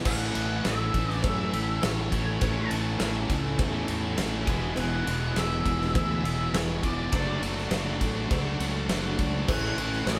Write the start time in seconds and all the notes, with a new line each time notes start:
0.01 A2 C5 D5
0.05 A1 E3 A3 C#4 E4 A4 E5 F#5, kick, crash, cowbell
0.35 A1 A2 E3 A3 C#4 A4, ride
0.63 A1 A2 E3 A3 C#4 A4 E5, snare, ride, cowbell
0.94 A1 A2 E3 A3 C#4 A4, kick, ride
1.10 D5, snare
1.22 F#2 A2 E3 A3 C#4 A4 E5, kick, ride, cowbell
1.52 A1 A2 E3 A3 C#4 A4, ride
1.82 A1 A2 E3 A3 C#4 A4 C#5, snare, ride, cowbell
2.11 A1 A2 E3 A3 C#4 A4 C#5, kick, ride
2.41 A1 A2 E3 A3 C#4 E4 A4 E5, kick, ride, cowbell
2.71 A1 A2 E3 A3 C#4 A4, ride
2.98 A1 A2 E3 A3 C#4 A4, snare, ride, cowbell
3.28 C#2 A2 E3 A3 C#4 A4, kick, ride
3.57 E2 A2 E3 A3 C#4 A4, kick, ride, cowbell
3.87 E2 A2 E3 A3 C#4 A4, ride
4.17 A1 A2 E3 A3 C#4 A4, snare, ride, cowbell
4.46 E1 E2 B2 E3 G#3 B3 E4 G#4 E5, kick, ride
4.75 E1 E2 B2 E3 G#3 B3 G#4 F#5, ride, cowbell
5.05 E1 E2 B2 E3 G#3 B3 G#4, ride
5.34 E1 E2 B2 E3 G#3 B3 G#4 E5, snare, ride, cowbell
5.64 E1 E2 B2 E3 G#3 B3 G#4, kick, ride
5.81 snare
5.94 D2 E2 B2 E3 G#3 B3 G#4 E5, kick, ride, cowbell
6.22 E1 E2 B2 E3 G#3 B3 G#4, ride
6.52 E1 E2 B2 E3 G#3 B3 G#4 C#5, snare, ride, cowbell
6.82 E1 E2 B2 E3 G#3 B3 G#4 D5, kick, ride
7.12 F#1 D3 F#3 A3 D4 F#4 D5, kick, ride, cowbell
7.42 F#1 D3 F#3 A3 D4 F#4, ride
7.57 snare
7.71 F#1 D3 F#3 A3 D4 F#4, snare, ride, cowbell
8.00 A1 D3 F#3 A3 D4 F#4, kick, ride
8.29 C#2 D3 F#3 A3 D4 F#4, kick, ride, cowbell
8.58 C#2 D3 F#3 A3 D4 F#4, ride
8.88 F#1 D3 F#3 A3 D4 F#4, snare, ride, cowbell
9.18 C#2 D3 F#3 A3 D4 F#4, kick, ride
9.48 A1 A2 E3 A3 C#4 E4 A4 C#5 F#5, kick, cowbell, crash
9.76 A1 A2 E3 A3 C#4 E4, ride
9.92 snare
10.06 A1 A2 E3 A3 C#4 E4 A4 C#5 E5, snare, ride, cowbell